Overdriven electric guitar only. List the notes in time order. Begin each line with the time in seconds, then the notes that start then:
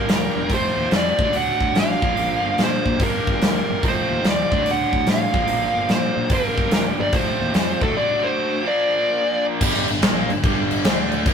Already playing: G2 D3 G3 A#3 D4
0.49 F2 C3 F3 A3 C4
1.19 D3 F#3 A3 D4
2.01 A#2 D3 F3 A#3 D4
2.99 G2 D3 G3 A#3 D4
3.83 F2 C3 F3 A3 C4
4.51 D3 F#3 A3 D4
5.33 A#2 D3 F3 A#3 D4
6.29 G2 D3 G3 A#3 D4
7.13 F2 C3 F3 A3 C4
7.81 D3 F#3 A3 D4
8.63 A#2 F3 A#3 D4
9.62 G2 D3 G3
9.89 G2 D3
10.03 A#2 F3 A#3
10.30 G2 D3
10.45 G2 D3 G3
10.86 D3 A3 D4
11.27 A#2 F3 A#3